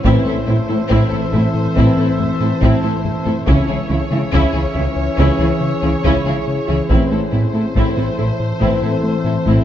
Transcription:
0.04 A1 A2 E3 A3 C4 E4 A4 C5 E5, taiko
0.25 A2 A3 E4 A4
0.46 A1 A2 C4 E4
0.68 A2 A3 E4 A4
0.88 A1 A2 A3 C4 E4, taiko
1.10 A2 C4 E4 A4
1.33 A1 A2 E4 A4, taiko low-mid
1.55 A2
1.75 A1 A2 E3 A3 C4 E4, taiko
1.97 A2 C4 E4 A4
2.19 A3, taiko low-mid
2.40 A2 C4 E4 A4
2.61 A1 A2 A3 C4 E4, taiko
2.83 A2 A3 E4 A4
3.05 A3, taiko low-mid
3.25 A2 C4 E4 A4, taiko low-mid
3.46 C#2 C#3 E3 C#4 E4 G#4 C#5 E5, taiko
3.67 C#3 G#3 E4 G#4
3.89 C#2 C#3 E3 E4
4.10 C#3 G#3 E4 G#4
4.32 C#2 C#3 C#4 E4, taiko
4.52 C#2 C#3 E3 E4 G#4
4.74 C#2 C#3 C#4 E4
4.96 C#2
5.16 C#2 C#3 E3 C#4 E4, taiko
5.21 C#4
5.38 C#2 C#3 E3 E4 G#4
5.61 C#3
5.82 C#2 C#3 E3 E4 G#4
6.04 C#2 C#3 C#4 E4, taiko
6.26 C#3 G#3 E4 G#4
6.47 C#3
6.68 C#2 C#3 E3 E4 G#4
6.90 A1 A2 E3 A3 C4 E4 A4 C5 E5, taiko
7.11 A2 A3 E4 A4
7.32 A1 A2 C4 E4
7.53 A2 A3 E4 A4
7.75 A1 A2 A3 C4 E4, taiko
7.97 A2 C4 E4 A4
8.18 A1 A2 E4 A4
8.40 A2
8.60 A1 A2 E3 A3 C4 E4, taiko
8.82 A2 C4 E4 A4
9.03 A3
9.24 A2 C4 E4 A4
9.46 A1 A2 A3 C4 E4, taiko

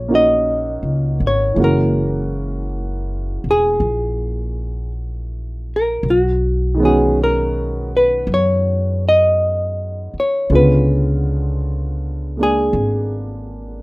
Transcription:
Already playing: A#1 A#2 F#3 G#3 F4 C#5
0.08 A#3 C#4 D#4 F#4
0.15 D#5
0.83 C#2
1.20 G#1
1.27 C#5
1.54 F#1 E3 G#3 A#3
1.58 C#4 F#4
1.64 A#4
3.44 E1
3.51 G#4
3.80 A#1
5.76 A#4
6.03 B1
6.10 F#4
6.74 D#3 G#3
6.79 B3 C#4
6.85 F#4 G#4
7.24 A#4
7.97 B4
8.27 F#2
8.34 C#5
9.09 D#5
10.14 muted upright bass stroke
10.20 C#5
10.50 C#2 D3 G#3 B3 C#4 F4
10.55 B4
12.37 G#3 A#3 D4
12.43 G#4
12.73 G#1

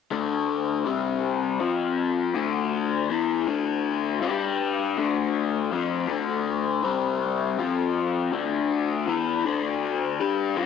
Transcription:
0.11 D3 A3 D4
0.86 C3 G3 C4
1.60 F3 C4 F4
2.35 D3 A3 D4
3.10 E3 B3 E4
3.47 D3 A3 D4
4.21 G3 D4 G4
4.97 D3 A3 D4
5.71 F3 C4 F4
6.08 D3 A3 D4
6.83 C3 G3 C4
7.59 F3 C4 F4
8.32 D3 A3 D4
9.07 E3 B3 E4
9.45 D3 A3 D4
10.20 G3 D4 G4
10.57 G3 D4 G4

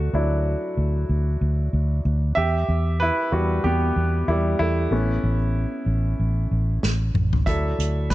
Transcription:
Already playing: A3 D4 F#4 A4
0.13 D2 F#3 D4 E4
0.77 D2
1.09 D2
1.41 D2
1.73 D2
2.05 D2
2.35 E2 G4 E5
2.69 E2
3.00 E4 B4
3.32 E2 G3 E4 F#4
3.64 E2 B3 G4
3.96 E2
4.28 E2 G3 E4
4.59 E2 A3 E4
4.91 A1 A3 B3 C#4
5.24 A1
5.86 A1
6.20 A1
6.51 A1
6.83 A1, snare
7.14 A1, mid tom
7.33 floor tom
7.46 D2 F#3 D4 E4 A4 E5, kick, closed hi-hat
7.79 D2, closed hi-hat
8.10 B4, kick, snare, closed hi-hat

